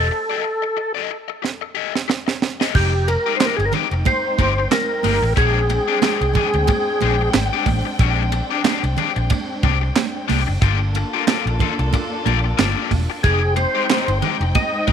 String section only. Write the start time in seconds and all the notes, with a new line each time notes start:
2.74 G#3 C4 D#4 G5
5.36 D4
10.61 A#3 D4 F4 A4
13.24 G#3 C4 D#4 G5